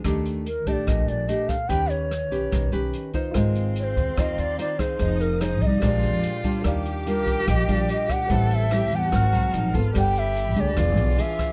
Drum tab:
HH |xxxxxxxx|xxxxxxxx|xxxxxxxx|xxxxxxxx|
SD |r---r--r|--r-r---|r---r--r|--r-r---|
BD |o--oo--o|o---o--o|o--oo--o|o--oo--o|

HH |xxxxxxxx|xxxxxxxx|xxxxxxxx|
SD |r---r--r|--r-r---|r---r--r|
BD |o--oo--o|o---o--o|o--oo--o|